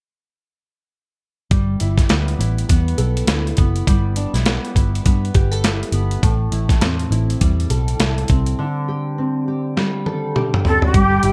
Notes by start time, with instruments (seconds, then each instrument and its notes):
1.51 picked electric bass G1, nylon-string guitar G3, kick, closed hi-hat
1.80 picked electric bass G1, nylon-string guitar E4, closed hi-hat
1.98 kick, snare, closed hi-hat
2.09 picked electric bass D2, nylon-string guitar B3, snare, closed hi-hat
2.28 closed hi-hat
2.39 picked electric bass A1, nylon-string guitar E4, closed hi-hat
2.58 closed hi-hat
2.69 picked electric bass E2, nylon-string guitar B3, kick, closed hi-hat
2.88 closed hi-hat
2.98 picked electric bass B1, nylon-string guitar A4, closed hi-hat
3.17 closed hi-hat
3.27 picked electric bass D2, nylon-string guitar E4, snare, closed hi-hat
3.47 closed hi-hat
3.57 picked electric bass F#1, nylon-string guitar B3, kick, closed hi-hat
3.76 closed hi-hat
3.87 picked electric bass G1, nylon-string guitar G3, kick, closed hi-hat
4.16 nylon-string guitar D4, closed hi-hat
4.34 picked electric bass B1, nylon-string guitar E4, snare, closed hi-hat
4.46 nylon-string guitar B3, snare, closed hi-hat
4.65 closed hi-hat
4.75 picked electric bass G1, nylon-string guitar E4, kick, closed hi-hat
4.95 closed hi-hat
5.05 picked electric bass G2, nylon-string guitar B3, kick, closed hi-hat
5.25 closed hi-hat
5.34 picked electric bass G1, nylon-string guitar G4, kick, closed hi-hat
5.51 nylon-string guitar A4, closed hi-hat
5.64 nylon-string guitar E4, snare, closed hi-hat
5.83 closed hi-hat
5.92 picked electric bass G1, nylon-string guitar B3, closed hi-hat
6.11 closed hi-hat
6.23 picked electric bass A1, nylon-string guitar A2, kick, closed hi-hat
6.52 picked electric bass A1, nylon-string guitar E4, closed hi-hat
6.69 kick, snare, closed hi-hat
6.81 picked electric bass E2, nylon-string guitar C4, snare, closed hi-hat
6.99 closed hi-hat
7.11 picked electric bass A1, nylon-string guitar E4, closed hi-hat
7.30 closed hi-hat
7.41 picked electric bass E2, nylon-string guitar G3, kick, closed hi-hat
7.60 closed hi-hat
7.70 picked electric bass B1, nylon-string guitar A4, closed hi-hat
7.88 closed hi-hat
7.99 picked electric bass C2, nylon-string guitar E4, snare, closed hi-hat
8.18 closed hi-hat
8.28 picked electric bass C2, nylon-string guitar C4, kick, closed hi-hat
8.46 closed hi-hat
8.59 nylon-string guitar D3
8.88 nylon-string guitar G4
9.18 nylon-string guitar C4
9.48 nylon-string guitar G4
9.77 nylon-string guitar G3, snare
10.06 nylon-string guitar A4, high tom
10.35 nylon-string guitar G4, mid tom
10.54 mid tom
10.65 nylon-string guitar C4, shakuhachi A4, floor tom
10.82 shakuhachi G4, floor tom
10.94 picked electric bass G1, nylon-string guitar G3, kick, closed hi-hat
11.23 picked electric bass G1, nylon-string guitar E4, closed hi-hat